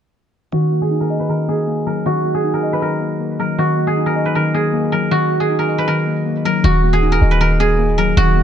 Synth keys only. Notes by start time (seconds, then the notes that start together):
0.53 D#3
0.72 A#3
0.91 D#4
1.10 D#5
1.29 D#3
1.48 A#3
1.67 A#3
1.87 F#3
2.06 D#3
2.25 A#3
2.44 D#4
2.63 D#5
2.82 D#3
3.01 A#3
3.20 A#3
3.39 F#3
3.58 D#3
3.78 A#3
3.97 D#4
4.16 D#5
4.35 D#3
4.54 A#3
4.73 A#3
4.92 F#3
5.11 D#3
5.31 A#3
5.50 D#4
5.69 D#5
5.88 D#3
6.07 A#3
6.26 A#3
6.45 F#3
6.64 D#3
6.83 A#3
7.02 D#4
7.21 D#5
7.41 D#3
7.60 A#3
7.79 A#3
7.98 F#3
8.17 D#3
8.36 A#3